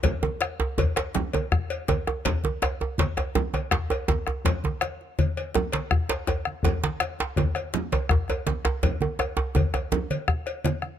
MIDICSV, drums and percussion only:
0, 0, Header, 1, 4, 480
1, 0, Start_track
1, 0, Tempo, 365631
1, 58, Time_signature, 12, 3, 24, 8
1, 14426, End_track
2, 0, Start_track
2, 0, Title_t, "Bombo"
2, 62, Note_on_c, 9, 43, 104
2, 194, Note_off_c, 9, 43, 0
2, 547, Note_on_c, 9, 37, 98
2, 678, Note_off_c, 9, 37, 0
2, 1021, Note_on_c, 9, 43, 91
2, 1152, Note_off_c, 9, 43, 0
2, 1264, Note_on_c, 9, 37, 68
2, 1395, Note_off_c, 9, 37, 0
2, 1995, Note_on_c, 9, 37, 90
2, 1995, Note_on_c, 9, 43, 93
2, 2127, Note_off_c, 9, 37, 0
2, 2127, Note_off_c, 9, 43, 0
2, 2248, Note_on_c, 9, 37, 26
2, 2379, Note_off_c, 9, 37, 0
2, 2492, Note_on_c, 9, 37, 29
2, 2623, Note_off_c, 9, 37, 0
2, 2722, Note_on_c, 9, 37, 64
2, 2853, Note_off_c, 9, 37, 0
2, 2963, Note_on_c, 9, 37, 26
2, 2963, Note_on_c, 9, 43, 83
2, 3095, Note_off_c, 9, 37, 0
2, 3095, Note_off_c, 9, 43, 0
2, 3206, Note_on_c, 9, 37, 27
2, 3337, Note_off_c, 9, 37, 0
2, 3449, Note_on_c, 9, 37, 89
2, 3580, Note_off_c, 9, 37, 0
2, 3695, Note_on_c, 9, 37, 28
2, 3826, Note_off_c, 9, 37, 0
2, 3926, Note_on_c, 9, 43, 84
2, 4057, Note_off_c, 9, 43, 0
2, 4167, Note_on_c, 9, 37, 64
2, 4298, Note_off_c, 9, 37, 0
2, 4412, Note_on_c, 9, 37, 27
2, 4543, Note_off_c, 9, 37, 0
2, 4646, Note_on_c, 9, 37, 25
2, 4778, Note_off_c, 9, 37, 0
2, 4875, Note_on_c, 9, 37, 92
2, 4875, Note_on_c, 9, 43, 92
2, 5006, Note_off_c, 9, 37, 0
2, 5006, Note_off_c, 9, 43, 0
2, 5368, Note_on_c, 9, 37, 26
2, 5499, Note_off_c, 9, 37, 0
2, 5600, Note_on_c, 9, 37, 68
2, 5731, Note_off_c, 9, 37, 0
2, 5839, Note_on_c, 9, 43, 82
2, 5970, Note_off_c, 9, 43, 0
2, 6317, Note_on_c, 9, 37, 88
2, 6448, Note_off_c, 9, 37, 0
2, 7757, Note_on_c, 9, 37, 102
2, 7757, Note_on_c, 9, 43, 98
2, 7888, Note_off_c, 9, 37, 0
2, 7888, Note_off_c, 9, 43, 0
2, 7997, Note_on_c, 9, 37, 31
2, 8128, Note_off_c, 9, 37, 0
2, 8241, Note_on_c, 9, 37, 30
2, 8373, Note_off_c, 9, 37, 0
2, 8472, Note_on_c, 9, 37, 79
2, 8603, Note_off_c, 9, 37, 0
2, 8702, Note_on_c, 9, 43, 95
2, 8834, Note_off_c, 9, 43, 0
2, 9192, Note_on_c, 9, 37, 99
2, 9323, Note_off_c, 9, 37, 0
2, 9667, Note_on_c, 9, 43, 93
2, 9799, Note_off_c, 9, 43, 0
2, 9911, Note_on_c, 9, 37, 70
2, 10042, Note_off_c, 9, 37, 0
2, 10625, Note_on_c, 9, 37, 94
2, 10625, Note_on_c, 9, 43, 91
2, 10756, Note_off_c, 9, 37, 0
2, 10756, Note_off_c, 9, 43, 0
2, 10868, Note_on_c, 9, 37, 28
2, 10999, Note_off_c, 9, 37, 0
2, 11351, Note_on_c, 9, 37, 67
2, 11482, Note_off_c, 9, 37, 0
2, 11596, Note_on_c, 9, 43, 92
2, 11728, Note_off_c, 9, 43, 0
2, 12074, Note_on_c, 9, 37, 83
2, 12205, Note_off_c, 9, 37, 0
2, 12538, Note_on_c, 9, 43, 92
2, 12669, Note_off_c, 9, 43, 0
2, 12784, Note_on_c, 9, 37, 67
2, 12915, Note_off_c, 9, 37, 0
2, 13494, Note_on_c, 9, 37, 90
2, 13494, Note_on_c, 9, 43, 87
2, 13626, Note_off_c, 9, 37, 0
2, 13626, Note_off_c, 9, 43, 0
2, 13731, Note_on_c, 9, 37, 28
2, 13863, Note_off_c, 9, 37, 0
2, 13975, Note_on_c, 9, 37, 30
2, 14106, Note_off_c, 9, 37, 0
2, 14207, Note_on_c, 9, 37, 65
2, 14338, Note_off_c, 9, 37, 0
2, 14426, End_track
3, 0, Start_track
3, 0, Title_t, "Djembe"
3, 41, Note_on_c, 9, 62, 26
3, 41, Note_on_c, 9, 64, 77
3, 57, Note_on_c, 9, 63, 73
3, 172, Note_off_c, 9, 62, 0
3, 172, Note_off_c, 9, 64, 0
3, 188, Note_off_c, 9, 63, 0
3, 297, Note_on_c, 9, 62, 23
3, 299, Note_on_c, 9, 63, 74
3, 429, Note_off_c, 9, 62, 0
3, 430, Note_off_c, 9, 63, 0
3, 532, Note_on_c, 9, 62, 73
3, 663, Note_off_c, 9, 62, 0
3, 783, Note_on_c, 9, 63, 96
3, 784, Note_on_c, 9, 62, 22
3, 914, Note_off_c, 9, 63, 0
3, 916, Note_off_c, 9, 62, 0
3, 1024, Note_on_c, 9, 63, 73
3, 1028, Note_off_c, 9, 63, 0
3, 1028, Note_on_c, 9, 63, 69
3, 1028, Note_on_c, 9, 64, 69
3, 1159, Note_off_c, 9, 63, 0
3, 1159, Note_off_c, 9, 64, 0
3, 1273, Note_on_c, 9, 62, 72
3, 1404, Note_off_c, 9, 62, 0
3, 1504, Note_on_c, 9, 62, 79
3, 1518, Note_on_c, 9, 63, 71
3, 1635, Note_off_c, 9, 62, 0
3, 1649, Note_off_c, 9, 63, 0
3, 1763, Note_on_c, 9, 63, 76
3, 1894, Note_off_c, 9, 63, 0
3, 1992, Note_on_c, 9, 64, 74
3, 2123, Note_off_c, 9, 64, 0
3, 2235, Note_on_c, 9, 62, 20
3, 2366, Note_off_c, 9, 62, 0
3, 2472, Note_on_c, 9, 62, 69
3, 2472, Note_on_c, 9, 63, 68
3, 2478, Note_off_c, 9, 63, 0
3, 2478, Note_on_c, 9, 63, 100
3, 2603, Note_off_c, 9, 62, 0
3, 2609, Note_off_c, 9, 63, 0
3, 2724, Note_on_c, 9, 63, 75
3, 2855, Note_off_c, 9, 63, 0
3, 2956, Note_on_c, 9, 62, 22
3, 2956, Note_on_c, 9, 64, 73
3, 2962, Note_off_c, 9, 62, 0
3, 2962, Note_on_c, 9, 62, 77
3, 3088, Note_off_c, 9, 64, 0
3, 3094, Note_off_c, 9, 62, 0
3, 3200, Note_on_c, 9, 62, 22
3, 3212, Note_on_c, 9, 63, 75
3, 3331, Note_off_c, 9, 62, 0
3, 3343, Note_off_c, 9, 63, 0
3, 3440, Note_on_c, 9, 62, 68
3, 3445, Note_on_c, 9, 63, 96
3, 3571, Note_off_c, 9, 62, 0
3, 3576, Note_off_c, 9, 63, 0
3, 3691, Note_on_c, 9, 63, 72
3, 3822, Note_off_c, 9, 63, 0
3, 3923, Note_on_c, 9, 62, 22
3, 3923, Note_on_c, 9, 63, 64
3, 3923, Note_on_c, 9, 64, 68
3, 3928, Note_off_c, 9, 62, 0
3, 3928, Note_on_c, 9, 62, 76
3, 4054, Note_off_c, 9, 63, 0
3, 4054, Note_off_c, 9, 64, 0
3, 4060, Note_off_c, 9, 62, 0
3, 4169, Note_on_c, 9, 63, 73
3, 4300, Note_off_c, 9, 63, 0
3, 4402, Note_on_c, 9, 62, 67
3, 4402, Note_on_c, 9, 63, 97
3, 4533, Note_off_c, 9, 63, 0
3, 4534, Note_off_c, 9, 62, 0
3, 4644, Note_on_c, 9, 63, 74
3, 4775, Note_off_c, 9, 63, 0
3, 4883, Note_on_c, 9, 62, 76
3, 4887, Note_on_c, 9, 64, 61
3, 5014, Note_off_c, 9, 62, 0
3, 5018, Note_off_c, 9, 64, 0
3, 5123, Note_on_c, 9, 63, 75
3, 5254, Note_off_c, 9, 63, 0
3, 5360, Note_on_c, 9, 63, 100
3, 5365, Note_off_c, 9, 63, 0
3, 5365, Note_on_c, 9, 62, 63
3, 5365, Note_on_c, 9, 63, 66
3, 5496, Note_off_c, 9, 62, 0
3, 5496, Note_off_c, 9, 63, 0
3, 5611, Note_on_c, 9, 63, 73
3, 5742, Note_off_c, 9, 63, 0
3, 5850, Note_on_c, 9, 62, 78
3, 5854, Note_off_c, 9, 62, 0
3, 5854, Note_on_c, 9, 62, 20
3, 5854, Note_on_c, 9, 64, 69
3, 5985, Note_off_c, 9, 62, 0
3, 5985, Note_off_c, 9, 64, 0
3, 6085, Note_on_c, 9, 62, 21
3, 6101, Note_on_c, 9, 63, 75
3, 6216, Note_off_c, 9, 62, 0
3, 6232, Note_off_c, 9, 63, 0
3, 6326, Note_on_c, 9, 62, 63
3, 6457, Note_off_c, 9, 62, 0
3, 6576, Note_on_c, 9, 62, 22
3, 6707, Note_off_c, 9, 62, 0
3, 6808, Note_on_c, 9, 63, 69
3, 6808, Note_on_c, 9, 64, 72
3, 6940, Note_off_c, 9, 63, 0
3, 6940, Note_off_c, 9, 64, 0
3, 7279, Note_on_c, 9, 62, 75
3, 7291, Note_on_c, 9, 63, 95
3, 7410, Note_off_c, 9, 62, 0
3, 7422, Note_off_c, 9, 63, 0
3, 7527, Note_on_c, 9, 62, 72
3, 7658, Note_off_c, 9, 62, 0
3, 7762, Note_on_c, 9, 64, 79
3, 7893, Note_off_c, 9, 64, 0
3, 8000, Note_on_c, 9, 62, 22
3, 8001, Note_off_c, 9, 62, 0
3, 8001, Note_on_c, 9, 62, 78
3, 8132, Note_off_c, 9, 62, 0
3, 8236, Note_on_c, 9, 62, 75
3, 8236, Note_on_c, 9, 63, 75
3, 8250, Note_off_c, 9, 63, 0
3, 8250, Note_on_c, 9, 63, 75
3, 8368, Note_off_c, 9, 62, 0
3, 8382, Note_off_c, 9, 63, 0
3, 8724, Note_on_c, 9, 63, 95
3, 8732, Note_on_c, 9, 62, 27
3, 8732, Note_on_c, 9, 64, 84
3, 8855, Note_off_c, 9, 63, 0
3, 8863, Note_off_c, 9, 62, 0
3, 8863, Note_off_c, 9, 64, 0
3, 8969, Note_on_c, 9, 62, 25
3, 8974, Note_off_c, 9, 62, 0
3, 8974, Note_on_c, 9, 62, 73
3, 9105, Note_off_c, 9, 62, 0
3, 9196, Note_on_c, 9, 62, 74
3, 9327, Note_off_c, 9, 62, 0
3, 9438, Note_on_c, 9, 62, 22
3, 9456, Note_off_c, 9, 62, 0
3, 9456, Note_on_c, 9, 62, 76
3, 9587, Note_off_c, 9, 62, 0
3, 9678, Note_on_c, 9, 63, 72
3, 9678, Note_on_c, 9, 64, 75
3, 9689, Note_off_c, 9, 63, 0
3, 9689, Note_on_c, 9, 63, 74
3, 9809, Note_off_c, 9, 64, 0
3, 9821, Note_off_c, 9, 63, 0
3, 10157, Note_on_c, 9, 62, 79
3, 10288, Note_off_c, 9, 62, 0
3, 10405, Note_on_c, 9, 63, 92
3, 10537, Note_off_c, 9, 63, 0
3, 10644, Note_on_c, 9, 64, 77
3, 10646, Note_on_c, 9, 63, 81
3, 10775, Note_off_c, 9, 64, 0
3, 10777, Note_off_c, 9, 63, 0
3, 10877, Note_on_c, 9, 62, 22
3, 10889, Note_on_c, 9, 63, 75
3, 11009, Note_off_c, 9, 62, 0
3, 11020, Note_off_c, 9, 63, 0
3, 11114, Note_on_c, 9, 62, 70
3, 11119, Note_on_c, 9, 63, 80
3, 11245, Note_off_c, 9, 62, 0
3, 11250, Note_off_c, 9, 63, 0
3, 11356, Note_on_c, 9, 63, 99
3, 11487, Note_off_c, 9, 63, 0
3, 11591, Note_on_c, 9, 63, 73
3, 11594, Note_on_c, 9, 62, 25
3, 11594, Note_on_c, 9, 64, 70
3, 11722, Note_off_c, 9, 63, 0
3, 11725, Note_off_c, 9, 62, 0
3, 11725, Note_off_c, 9, 64, 0
3, 11829, Note_on_c, 9, 62, 22
3, 11837, Note_on_c, 9, 63, 72
3, 11961, Note_off_c, 9, 62, 0
3, 11968, Note_off_c, 9, 63, 0
3, 12065, Note_on_c, 9, 63, 71
3, 12067, Note_on_c, 9, 62, 66
3, 12196, Note_off_c, 9, 63, 0
3, 12198, Note_off_c, 9, 62, 0
3, 12297, Note_on_c, 9, 63, 99
3, 12428, Note_off_c, 9, 63, 0
3, 12535, Note_on_c, 9, 63, 76
3, 12544, Note_off_c, 9, 63, 0
3, 12544, Note_on_c, 9, 63, 67
3, 12544, Note_on_c, 9, 64, 69
3, 12675, Note_off_c, 9, 63, 0
3, 12675, Note_off_c, 9, 64, 0
3, 12785, Note_on_c, 9, 63, 73
3, 12916, Note_off_c, 9, 63, 0
3, 13022, Note_on_c, 9, 63, 75
3, 13024, Note_on_c, 9, 62, 71
3, 13154, Note_off_c, 9, 63, 0
3, 13155, Note_off_c, 9, 62, 0
3, 13749, Note_on_c, 9, 62, 22
3, 13881, Note_off_c, 9, 62, 0
3, 13988, Note_on_c, 9, 62, 74
3, 13988, Note_on_c, 9, 63, 66
3, 14119, Note_off_c, 9, 62, 0
3, 14119, Note_off_c, 9, 63, 0
3, 14426, End_track
4, 0, Start_track
4, 0, Title_t, "Drums"
4, 46, Note_on_c, 9, 56, 67
4, 61, Note_on_c, 9, 64, 72
4, 178, Note_off_c, 9, 56, 0
4, 192, Note_off_c, 9, 64, 0
4, 302, Note_on_c, 9, 63, 64
4, 433, Note_off_c, 9, 63, 0
4, 539, Note_on_c, 9, 56, 52
4, 548, Note_on_c, 9, 63, 22
4, 670, Note_off_c, 9, 56, 0
4, 680, Note_off_c, 9, 63, 0
4, 1027, Note_on_c, 9, 63, 68
4, 1037, Note_on_c, 9, 56, 54
4, 1158, Note_off_c, 9, 63, 0
4, 1168, Note_off_c, 9, 56, 0
4, 1266, Note_on_c, 9, 56, 50
4, 1269, Note_on_c, 9, 63, 22
4, 1397, Note_off_c, 9, 56, 0
4, 1401, Note_off_c, 9, 63, 0
4, 1514, Note_on_c, 9, 63, 22
4, 1514, Note_on_c, 9, 64, 71
4, 1646, Note_off_c, 9, 63, 0
4, 1646, Note_off_c, 9, 64, 0
4, 1752, Note_on_c, 9, 56, 50
4, 1756, Note_on_c, 9, 63, 52
4, 1883, Note_off_c, 9, 56, 0
4, 1887, Note_off_c, 9, 63, 0
4, 2235, Note_on_c, 9, 56, 50
4, 2367, Note_off_c, 9, 56, 0
4, 2477, Note_on_c, 9, 63, 61
4, 2481, Note_on_c, 9, 56, 52
4, 2608, Note_off_c, 9, 63, 0
4, 2612, Note_off_c, 9, 56, 0
4, 2719, Note_on_c, 9, 63, 21
4, 2850, Note_off_c, 9, 63, 0
4, 2955, Note_on_c, 9, 56, 58
4, 2960, Note_on_c, 9, 64, 63
4, 3086, Note_off_c, 9, 56, 0
4, 3091, Note_off_c, 9, 64, 0
4, 3199, Note_on_c, 9, 63, 50
4, 3330, Note_off_c, 9, 63, 0
4, 3438, Note_on_c, 9, 63, 20
4, 3452, Note_on_c, 9, 56, 48
4, 3569, Note_off_c, 9, 63, 0
4, 3583, Note_off_c, 9, 56, 0
4, 3681, Note_on_c, 9, 63, 19
4, 3813, Note_off_c, 9, 63, 0
4, 3914, Note_on_c, 9, 63, 59
4, 3934, Note_on_c, 9, 56, 48
4, 4046, Note_off_c, 9, 63, 0
4, 4065, Note_off_c, 9, 56, 0
4, 4161, Note_on_c, 9, 63, 21
4, 4163, Note_on_c, 9, 56, 43
4, 4292, Note_off_c, 9, 63, 0
4, 4294, Note_off_c, 9, 56, 0
4, 4404, Note_on_c, 9, 63, 22
4, 4404, Note_on_c, 9, 64, 68
4, 4535, Note_off_c, 9, 63, 0
4, 4535, Note_off_c, 9, 64, 0
4, 4641, Note_on_c, 9, 63, 48
4, 4651, Note_on_c, 9, 56, 44
4, 4772, Note_off_c, 9, 63, 0
4, 4783, Note_off_c, 9, 56, 0
4, 5138, Note_on_c, 9, 56, 45
4, 5269, Note_off_c, 9, 56, 0
4, 5364, Note_on_c, 9, 63, 70
4, 5496, Note_off_c, 9, 63, 0
4, 5845, Note_on_c, 9, 64, 71
4, 5851, Note_on_c, 9, 56, 57
4, 5977, Note_off_c, 9, 64, 0
4, 5982, Note_off_c, 9, 56, 0
4, 6090, Note_on_c, 9, 63, 55
4, 6221, Note_off_c, 9, 63, 0
4, 6321, Note_on_c, 9, 56, 46
4, 6332, Note_on_c, 9, 63, 22
4, 6452, Note_off_c, 9, 56, 0
4, 6463, Note_off_c, 9, 63, 0
4, 6810, Note_on_c, 9, 56, 45
4, 6811, Note_on_c, 9, 63, 70
4, 6941, Note_off_c, 9, 56, 0
4, 6942, Note_off_c, 9, 63, 0
4, 7054, Note_on_c, 9, 56, 45
4, 7054, Note_on_c, 9, 63, 23
4, 7185, Note_off_c, 9, 56, 0
4, 7185, Note_off_c, 9, 63, 0
4, 7293, Note_on_c, 9, 63, 22
4, 7293, Note_on_c, 9, 64, 72
4, 7424, Note_off_c, 9, 63, 0
4, 7424, Note_off_c, 9, 64, 0
4, 7515, Note_on_c, 9, 56, 44
4, 7527, Note_on_c, 9, 63, 53
4, 7646, Note_off_c, 9, 56, 0
4, 7659, Note_off_c, 9, 63, 0
4, 8006, Note_on_c, 9, 56, 46
4, 8137, Note_off_c, 9, 56, 0
4, 8246, Note_on_c, 9, 56, 47
4, 8377, Note_off_c, 9, 56, 0
4, 8495, Note_on_c, 9, 63, 26
4, 8626, Note_off_c, 9, 63, 0
4, 8723, Note_on_c, 9, 56, 54
4, 8732, Note_on_c, 9, 64, 76
4, 8854, Note_off_c, 9, 56, 0
4, 8863, Note_off_c, 9, 64, 0
4, 8973, Note_on_c, 9, 63, 62
4, 9104, Note_off_c, 9, 63, 0
4, 9202, Note_on_c, 9, 56, 45
4, 9211, Note_on_c, 9, 63, 21
4, 9333, Note_off_c, 9, 56, 0
4, 9342, Note_off_c, 9, 63, 0
4, 9678, Note_on_c, 9, 56, 48
4, 9686, Note_on_c, 9, 63, 80
4, 9809, Note_off_c, 9, 56, 0
4, 9817, Note_off_c, 9, 63, 0
4, 9922, Note_on_c, 9, 56, 42
4, 9923, Note_on_c, 9, 63, 23
4, 10053, Note_off_c, 9, 56, 0
4, 10054, Note_off_c, 9, 63, 0
4, 10165, Note_on_c, 9, 63, 25
4, 10165, Note_on_c, 9, 64, 78
4, 10296, Note_off_c, 9, 63, 0
4, 10296, Note_off_c, 9, 64, 0
4, 10401, Note_on_c, 9, 63, 57
4, 10405, Note_on_c, 9, 56, 46
4, 10532, Note_off_c, 9, 63, 0
4, 10536, Note_off_c, 9, 56, 0
4, 10892, Note_on_c, 9, 56, 46
4, 11023, Note_off_c, 9, 56, 0
4, 11114, Note_on_c, 9, 63, 77
4, 11245, Note_off_c, 9, 63, 0
4, 11358, Note_on_c, 9, 63, 25
4, 11490, Note_off_c, 9, 63, 0
4, 11592, Note_on_c, 9, 64, 76
4, 11597, Note_on_c, 9, 56, 58
4, 11724, Note_off_c, 9, 64, 0
4, 11728, Note_off_c, 9, 56, 0
4, 11823, Note_on_c, 9, 63, 59
4, 11954, Note_off_c, 9, 63, 0
4, 12066, Note_on_c, 9, 63, 23
4, 12071, Note_on_c, 9, 56, 49
4, 12197, Note_off_c, 9, 63, 0
4, 12202, Note_off_c, 9, 56, 0
4, 12550, Note_on_c, 9, 63, 75
4, 12554, Note_on_c, 9, 56, 45
4, 12681, Note_off_c, 9, 63, 0
4, 12686, Note_off_c, 9, 56, 0
4, 12792, Note_on_c, 9, 63, 25
4, 12795, Note_on_c, 9, 56, 41
4, 12923, Note_off_c, 9, 63, 0
4, 12926, Note_off_c, 9, 56, 0
4, 13022, Note_on_c, 9, 63, 25
4, 13022, Note_on_c, 9, 64, 78
4, 13153, Note_off_c, 9, 63, 0
4, 13153, Note_off_c, 9, 64, 0
4, 13265, Note_on_c, 9, 63, 56
4, 13270, Note_on_c, 9, 56, 46
4, 13396, Note_off_c, 9, 63, 0
4, 13401, Note_off_c, 9, 56, 0
4, 13741, Note_on_c, 9, 56, 46
4, 13872, Note_off_c, 9, 56, 0
4, 13975, Note_on_c, 9, 56, 45
4, 13975, Note_on_c, 9, 63, 71
4, 14106, Note_off_c, 9, 63, 0
4, 14107, Note_off_c, 9, 56, 0
4, 14215, Note_on_c, 9, 63, 25
4, 14346, Note_off_c, 9, 63, 0
4, 14426, End_track
0, 0, End_of_file